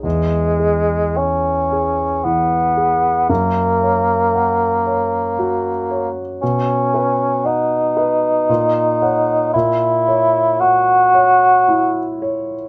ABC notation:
X:1
M:3/4
L:1/16
Q:1/4=57
K:F#mix
V:1 name="Grand piano"
E,,2 G2 c2 G2 E,2 G2 | F,,2 c2 f2 c2 F2 c2 | B,,2 B2 f2 B2 A,,2 [cf]2 | A,,2 c2 f2 c2 E2 c2 |]
V:2 name="Bassoon"
G,4 C4 B,4 | A,8- A,3 z | C4 D8 | E4 F6 z2 |]